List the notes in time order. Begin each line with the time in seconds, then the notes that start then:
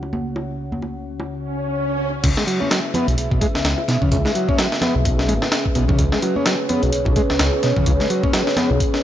Already playing: C#3 C#4 C#5 F#5
0.03 high bongo
0.13 high conga
0.36 high bongo
0.72 high conga
0.82 high bongo
1.20 high bongo
1.30 swell
2.23 C#2 C#3 C#4 G#4 B4 E5, kick, closed hi-hat, crash
2.37 G#3, snare
2.47 F#3, closed hi-hat
2.61 C#4, high bongo, high conga
2.71 F#3, snare, closed hi-hat
2.94 B3, closed hi-hat, high bongo, low conga
3.07 B1, closed hi-hat, high conga
3.18 B1, closed hi-hat
3.31 B1, kick
3.41 G#3, kick, closed hi-hat, high bongo
3.54 C#2, snare
3.64 C#2, snare, closed hi-hat
3.78 high bongo
3.88 B2, snare, closed hi-hat
4.01 C#3, kick, low conga
4.11 C#2 C#3, kick, closed hi-hat
4.25 G#3, snare, high bongo
4.35 F#3, closed hi-hat
4.48 C#4, kick, high conga
4.58 F#3, snare, closed hi-hat, high bongo
4.72 snare
4.81 B3, snare, closed hi-hat, low conga
4.94 B1, high conga
5.05 kick, closed hi-hat, high bongo
5.19 snare
5.28 G#1 G#3, closed hi-hat, high conga
5.42 snare, high bongo
5.52 snare, closed hi-hat
5.66 kick
5.75 B1 B2, closed hi-hat
5.88 C#3, kick, high bongo, low conga
5.99 C#2 C#3 C#5, kick, closed hi-hat
6.12 G#3, snare
6.22 F#3, closed hi-hat, high bongo
6.36 C#4, high conga
6.46 F#3, snare, closed hi-hat
6.69 B3, closed hi-hat, high bongo, low conga
6.83 B1, closed hi-hat, high conga
6.93 B1, closed hi-hat
7.05 B1, kick, high bongo
7.16 G#3, kick, closed hi-hat
7.30 C#2, snare
7.39 C#2, snare, closed hi-hat
7.53 high bongo
7.63 B2, snare, closed hi-hat
7.76 C#3, kick, low conga
7.86 C#2 C#3, kick, closed hi-hat, high bongo
8.00 G#3, snare
8.10 F#3, closed hi-hat
8.23 C#4, kick, high conga
8.33 F#3, snare, closed hi-hat, high bongo
8.47 snare
8.56 B3, snare, closed hi-hat, low conga
8.70 B1, high bongo, high conga
8.80 kick, closed hi-hat
8.94 snare